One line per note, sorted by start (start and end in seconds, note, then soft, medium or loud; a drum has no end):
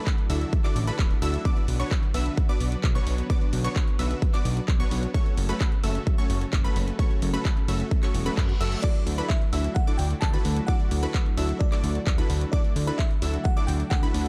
0.00 5.10 D3 medium
0.00 1.41 F#3 medium
0.00 1.41 A3 medium
0.00 0.13 D4 medium
0.00 0.13 E4 medium
0.00 1.41 E4 medium
0.00 0.13 F#4 medium
0.00 5.10 F#4 medium
0.00 0.13 A4 medium
0.00 0.13 B4 medium
0.00 0.13 B5 medium
0.07 kick loud
0.07 clap loud
0.07 closed hi-hat medium
0.18 closed hi-hat soft
0.30 0.45 D2 medium
0.30 0.62 D4 medium
0.30 0.62 E4 medium
0.30 0.62 F#4 medium
0.30 0.62 A4 medium
0.30 0.62 E5 medium
0.30 0.62 E6 medium
0.30 open hi-hat loud
0.41 closed hi-hat soft
0.53 kick loud
0.53 closed hi-hat medium
0.64 0.85 D4 medium
0.64 0.85 E4 medium
0.64 0.85 F#4 medium
0.64 0.85 A4 medium
0.64 0.85 D5 medium
0.64 0.85 D6 medium
0.64 clap soft
0.64 closed hi-hat soft
0.76 0.91 A1 medium
0.76 open hi-hat loud
0.87 1.16 D4 medium
0.87 1.16 E4 medium
0.87 1.16 F#4 medium
0.87 1.16 A4 medium
0.87 1.16 B4 medium
0.87 1.16 B5 medium
0.87 closed hi-hat medium
0.99 1.14 D1 loud
0.99 kick loud
0.99 clap loud
0.99 closed hi-hat soft
1.11 closed hi-hat soft
1.22 1.37 D2 medium
1.22 1.42 D4 loud
1.22 1.42 E4 medium
1.22 1.42 F#4 medium
1.22 1.42 A4 medium
1.22 1.42 E5 loud
1.22 1.42 E6 loud
1.22 open hi-hat loud
1.34 closed hi-hat medium
1.45 5.11 F#3 medium
1.45 1.77 B3 medium
1.45 5.11 B3 medium
1.45 1.77 D4 medium
1.45 1.77 F#4 medium
1.45 1.77 B4 medium
1.45 5.11 B4 medium
1.45 1.77 D5 medium
1.45 1.77 D6 medium
1.45 kick loud
1.45 closed hi-hat soft
1.57 closed hi-hat soft
1.68 1.84 B1 loud
1.68 open hi-hat loud
1.80 1.98 B3 medium
1.80 1.98 D4 medium
1.80 1.98 F#4 medium
1.80 1.98 B4 medium
1.80 1.98 C#5 medium
1.80 1.97 C#6 medium
1.80 closed hi-hat medium
1.91 kick loud
1.91 clap loud
1.91 closed hi-hat medium
2.03 closed hi-hat soft
2.14 2.30 B1 medium
2.14 2.46 B3 medium
2.14 2.46 D4 medium
2.14 2.46 F#4 medium
2.14 2.46 B4 medium
2.14 2.46 E5 medium
2.14 2.46 E6 medium
2.14 open hi-hat loud
2.26 closed hi-hat medium
2.37 kick loud
2.37 closed hi-hat medium
2.49 2.77 B3 medium
2.49 2.77 D4 medium
2.49 2.77 F#4 medium
2.49 2.77 B4 medium
2.49 2.77 D5 medium
2.49 2.77 D6 medium
2.49 closed hi-hat soft
2.60 2.76 B1 medium
2.60 open hi-hat loud
2.72 closed hi-hat medium
2.84 2.99 B1 medium
2.84 kick loud
2.84 clap loud
2.84 closed hi-hat soft
2.95 3.27 B3 medium
2.95 3.27 D4 medium
2.95 3.27 F#4 medium
2.95 3.27 B4 medium
2.95 3.27 C#5 loud
2.95 3.27 C#6 loud
2.95 closed hi-hat soft
3.07 3.22 B1 loud
3.07 open hi-hat loud
3.18 closed hi-hat medium
3.30 3.62 B3 medium
3.30 3.62 D4 medium
3.30 3.62 F#4 medium
3.30 3.62 B4 medium
3.30 3.62 D5 medium
3.30 3.62 D6 medium
3.30 kick loud
3.30 closed hi-hat soft
3.41 closed hi-hat soft
3.53 3.68 B1 loud
3.53 open hi-hat loud
3.64 3.82 B3 medium
3.64 3.82 D4 medium
3.64 3.82 F#4 medium
3.64 3.82 B4 medium
3.64 3.82 C#5 medium
3.64 3.82 C#6 medium
3.64 closed hi-hat medium
3.76 kick loud
3.76 clap loud
3.76 closed hi-hat medium
3.88 closed hi-hat soft
3.99 4.14 B1 medium
3.99 4.31 B3 medium
3.99 4.31 D4 medium
3.99 4.31 F#4 medium
3.99 4.31 B4 medium
3.99 4.31 E5 medium
3.99 4.31 E6 medium
3.99 open hi-hat loud
4.11 closed hi-hat medium
4.22 kick loud
4.22 closed hi-hat medium
4.34 4.62 B3 medium
4.34 4.62 D4 medium
4.34 4.62 F#4 medium
4.34 4.62 B4 medium
4.34 4.62 D5 medium
4.34 4.62 D6 medium
4.34 clap soft
4.34 closed hi-hat soft
4.45 4.60 B1 medium
4.45 open hi-hat loud
4.57 closed hi-hat medium
4.68 4.84 B1 loud
4.68 kick loud
4.68 clap loud
4.68 closed hi-hat medium
4.80 5.12 B3 medium
4.80 5.12 D4 medium
4.80 5.12 F#4 medium
4.80 5.12 B4 medium
4.80 5.12 C#5 loud
4.80 5.12 C#6 medium
4.80 closed hi-hat soft
4.91 5.07 B1 loud
4.91 open hi-hat loud
5.03 closed hi-hat medium
5.14 8.80 C#3 medium
5.14 14.28 F#3 medium
5.14 5.46 A3 medium
5.14 14.28 A3 medium
5.14 5.46 C#4 medium
5.14 5.46 F#4 medium
5.14 14.28 F#4 medium
5.14 5.46 A4 medium
5.14 8.80 A4 medium
5.14 5.46 C#5 medium
5.14 5.46 C#6 medium
5.14 kick loud
5.14 closed hi-hat medium
5.26 closed hi-hat soft
5.37 5.53 F#1 loud
5.37 open hi-hat loud
5.49 5.67 A3 medium
5.49 5.67 C#4 medium
5.49 5.67 F#4 medium
5.49 5.67 A4 medium
5.49 5.67 B4 medium
5.49 5.67 B5 medium
5.49 closed hi-hat medium
5.60 kick loud
5.60 clap loud
5.60 closed hi-hat medium
5.72 closed hi-hat soft
5.84 5.99 F#1 medium
5.84 6.16 A3 medium
5.84 6.16 C#4 medium
5.84 6.16 F#4 medium
5.84 6.16 A4 medium
5.84 6.16 E5 medium
5.84 6.15 E6 medium
5.84 open hi-hat loud
5.95 closed hi-hat medium
6.07 kick loud
6.07 closed hi-hat medium
6.18 6.47 A3 medium
6.18 6.47 C#4 medium
6.18 6.47 F#4 medium
6.18 6.47 A4 medium
6.18 6.47 C#5 medium
6.18 6.47 C#6 medium
6.18 closed hi-hat soft
6.30 6.45 F#1 medium
6.30 open hi-hat loud
6.41 closed hi-hat medium
6.53 6.68 F#1 loud
6.53 kick loud
6.53 clap loud
6.53 closed hi-hat medium
6.64 6.96 A3 medium
6.64 6.96 C#4 medium
6.64 6.96 F#4 medium
6.64 6.96 A4 medium
6.64 6.96 B4 loud
6.64 6.96 B5 loud
6.64 closed hi-hat soft
6.76 6.91 F#1 loud
6.76 open hi-hat loud
6.88 closed hi-hat medium
6.99 7.31 A3 medium
6.99 7.31 C#4 medium
6.99 7.31 F#4 medium
6.99 7.31 A4 medium
6.99 7.31 C#5 medium
6.99 7.31 C#6 medium
6.99 kick loud
6.99 closed hi-hat medium
7.11 closed hi-hat soft
7.22 7.38 F#1 loud
7.22 open hi-hat loud
7.34 7.51 A3 medium
7.34 7.51 C#4 medium
7.34 7.51 F#4 medium
7.34 7.51 A4 medium
7.34 7.51 B4 medium
7.34 7.51 B5 medium
7.34 closed hi-hat medium
7.45 kick loud
7.45 clap loud
7.45 closed hi-hat medium
7.57 closed hi-hat soft
7.68 7.84 F#1 medium
7.68 8.00 A3 medium
7.68 8.00 C#4 medium
7.68 8.00 F#4 medium
7.68 8.00 A4 medium
7.68 8.00 E5 medium
7.68 8.00 E6 medium
7.68 open hi-hat loud
7.80 closed hi-hat medium
7.91 kick loud
7.91 closed hi-hat medium
7.91 reverse cymbal medium
8.03 8.24 A3 medium
8.03 8.24 C#4 medium
8.03 8.24 F#4 medium
8.03 8.24 A4 medium
8.03 8.24 C#5 medium
8.03 8.24 C#6 medium
8.03 clap soft
8.03 closed hi-hat soft
8.14 8.30 E1 medium
8.14 open hi-hat loud
8.26 8.54 A3 medium
8.26 8.54 C#4 medium
8.26 8.54 F#4 medium
8.26 8.54 A4 medium
8.26 8.54 B4 medium
8.26 8.54 B5 medium
8.26 closed hi-hat medium
8.37 8.53 F#2 loud
8.37 kick loud
8.37 clap loud
8.37 closed hi-hat medium
8.49 closed hi-hat soft
8.60 8.76 F#1 medium
8.60 8.80 A3 loud
8.60 8.80 C#4 medium
8.60 8.80 F#4 medium
8.60 8.80 A4 medium
8.60 8.80 E5 loud
8.60 8.80 E6 loud
8.60 open hi-hat loud
8.72 closed hi-hat medium
8.82 14.28 D3 medium
8.82 9.16 D4 medium
8.82 12.49 E4 medium
8.82 9.16 E4 medium
8.82 9.16 F#4 medium
8.82 9.16 A4 medium
8.82 9.26 D5 medium
8.82 9.16 D5 medium
8.82 9.15 D6 medium
8.82 kick loud
8.82 closed hi-hat medium
8.82 crash medium
8.95 closed hi-hat soft
9.06 9.22 D2 loud
9.06 open hi-hat loud
9.18 9.36 D4 medium
9.18 9.36 E4 medium
9.18 9.36 F#4 medium
9.18 9.36 A4 medium
9.18 9.36 B4 medium
9.18 9.36 B5 medium
9.18 closed hi-hat medium
9.28 9.77 E5 loud
9.28 kick loud
9.28 clap loud
9.28 closed hi-hat medium
9.41 closed hi-hat soft
9.53 9.68 D2 medium
9.53 9.85 D4 medium
9.53 9.85 E4 medium
9.53 9.85 F#4 medium
9.53 9.85 A4 medium
9.53 9.85 E5 medium
9.53 9.85 E6 medium
9.53 open hi-hat loud
9.64 closed hi-hat medium
9.75 9.99 F#5 loud
9.75 kick loud
9.75 closed hi-hat medium
9.87 10.16 D4 medium
9.87 10.16 E4 medium
9.87 10.16 F#4 medium
9.87 10.16 A4 medium
9.87 10.16 D5 medium
9.87 10.16 D6 medium
9.87 closed hi-hat soft
9.98 10.14 D2 medium
9.98 10.08 G5 loud
9.98 open hi-hat loud
10.10 closed hi-hat medium
10.21 10.37 D2 loud
10.21 10.69 A5 loud
10.21 kick loud
10.21 clap loud
10.21 closed hi-hat medium
10.33 10.65 D4 medium
10.33 10.65 E4 medium
10.33 10.65 F#4 medium
10.33 10.65 A4 medium
10.33 10.65 B4 medium
10.33 10.65 B5 medium
10.33 closed hi-hat soft
10.45 10.61 D2 loud
10.45 open hi-hat loud
10.57 closed hi-hat medium
10.67 11.00 D4 medium
10.67 11.00 E4 medium
10.67 11.00 F#4 medium
10.67 11.00 A4 medium
10.67 11.00 D5 medium
10.67 11.63 F#5 loud
10.67 11.00 D6 medium
10.67 kick loud
10.67 closed hi-hat medium
10.80 closed hi-hat soft
10.91 11.07 D2 medium
10.91 open hi-hat loud
11.03 11.21 D4 medium
11.03 11.21 E4 medium
11.03 11.21 F#4 medium
11.03 11.21 A4 medium
11.03 11.21 B4 medium
11.03 11.21 B5 medium
11.03 closed hi-hat medium
11.14 kick loud
11.14 clap loud
11.14 closed hi-hat medium
11.26 closed hi-hat soft
11.37 11.53 D2 medium
11.37 11.69 D4 medium
11.37 11.69 E4 medium
11.37 11.69 F#4 medium
11.37 11.69 A4 medium
11.37 11.69 E5 medium
11.37 11.69 E6 medium
11.37 open hi-hat loud
11.49 closed hi-hat medium
11.59 12.25 D5 medium
11.59 kick loud
11.59 closed hi-hat medium
11.72 12.00 D4 medium
11.72 12.00 E4 medium
11.72 12.00 F#4 medium
11.72 12.00 A4 medium
11.72 12.00 D5 medium
11.72 12.00 D6 medium
11.72 clap soft
11.72 closed hi-hat soft
11.84 11.99 D2 medium
11.84 open hi-hat loud
11.95 closed hi-hat medium
12.07 12.22 D2 loud
12.07 kick loud
12.07 clap loud
12.07 closed hi-hat medium
12.18 12.50 D4 medium
12.18 12.50 E4 medium
12.18 12.50 F#4 medium
12.18 12.50 A4 medium
12.18 12.50 B4 medium
12.18 12.50 B5 loud
12.18 closed hi-hat soft
12.30 12.45 D2 loud
12.30 open hi-hat loud
12.41 closed hi-hat medium
12.52 14.28 D4 medium
12.52 12.85 D4 medium
12.52 12.85 E4 medium
12.52 12.85 F#4 medium
12.52 12.85 A4 medium
12.52 13.00 D5 medium
12.52 12.85 D5 medium
12.52 12.85 D6 medium
12.52 kick loud
12.52 closed hi-hat medium
12.64 closed hi-hat soft
12.76 12.91 D2 loud
12.76 open hi-hat loud
12.87 13.05 D4 medium
12.87 13.05 E4 medium
12.87 13.05 F#4 medium
12.87 13.05 A4 medium
12.87 13.05 B4 medium
12.87 13.05 B5 medium
12.87 closed hi-hat medium
12.98 13.46 E5 loud
12.98 kick loud
12.98 clap loud
12.98 closed hi-hat medium
13.11 closed hi-hat soft
13.22 13.37 D2 medium
13.22 13.54 D4 medium
13.22 13.54 E4 medium
13.22 13.54 F#4 medium
13.22 13.54 A4 medium
13.22 13.54 E5 medium
13.22 13.54 E6 medium
13.22 open hi-hat loud
13.34 closed hi-hat medium
13.44 13.68 F#5 loud
13.44 kick loud
13.44 closed hi-hat medium
13.57 13.85 D4 medium
13.57 13.85 E4 medium
13.57 13.85 F#4 medium
13.57 13.85 A4 medium
13.57 13.85 D5 medium
13.57 13.85 D6 medium
13.57 closed hi-hat soft
13.67 13.84 D2 medium
13.67 13.91 G5 loud
13.67 open hi-hat loud
13.80 closed hi-hat medium
13.90 14.07 D2 loud
13.90 14.28 F#5 loud
13.90 kick loud
13.90 clap loud
13.90 closed hi-hat medium
14.03 14.28 D4 medium
14.03 14.28 E4 medium
14.03 14.28 F#4 medium
14.03 14.28 A4 medium
14.03 14.28 B4 medium
14.03 14.28 B5 loud
14.03 closed hi-hat soft
14.14 14.28 D2 loud
14.14 open hi-hat loud